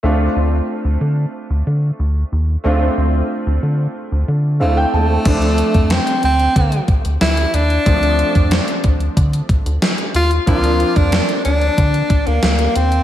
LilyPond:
<<
  \new Staff \with { instrumentName = "Tenor saxophone" } { \time 4/4 \key d \minor \tempo 4 = 92 r1 | r2. a8 a8~ | a4 c'8 c'4 r8 e'8 d'8~ | d'4. r2 f'8 |
f'8. d'8. d'4~ d'16 bes8. c'8 | }
  \new Staff \with { instrumentName = "Grand piano" } { \time 4/4 \key d \minor << { r1 | r2. f''16 g''16 a''8 | r1 | r1 |
r1 | } \\ { <a c' d' f'>1 | <a c' d' f'>2. <a c' d' e'>4 | <f a c' d'>1 | <f a c' d'>1 |
<f bes c' d'>1 | } >> }
  \new Staff \with { instrumentName = "Analog synth bass" } { \clef bass \time 4/4 \key d \minor d,8 d,8 r16 d,16 d8 r16 d,16 d8 d,8 ees,8 | d,8 d,8 r16 d,16 d8 r16 d,16 d8 d,8 ees,8 | d,8. f,8 r16 d,8 d8 r16 d,16 d,8 ees,8 | d,8. f,8 r16 d,8 d8 r16 d,16 r8 ees,8 |
d,8. f,8 r16 d,8 d8 r16 d,16 d,8 ees,8 | }
  \new DrumStaff \with { instrumentName = "Drums" } \drummode { \time 4/4 r4 r4 r4 r4 | r4 r4 r4 r4 | <cymc hh bd>16 hh16 hh16 <hh bd>16 <hh sn>16 hh16 hh16 hh16 <hh bd>16 hh16 <hh bd>16 hh16 <hh sn>16 hh16 hh16 hh16 | <hh bd>16 hh16 hh16 <hh bd>16 <hh sn>16 hh16 <hh bd>16 hh16 <hh bd>16 hh16 <hh bd>16 hh16 <hh sn>16 hh16 hh16 hh16 |
<hh bd>16 hh16 hh16 <hh bd>16 <hh sn>16 hh16 hh16 hh16 <hh bd>16 hh16 <hh bd>16 hh16 <hh sn>16 hh16 hh16 hh16 | }
>>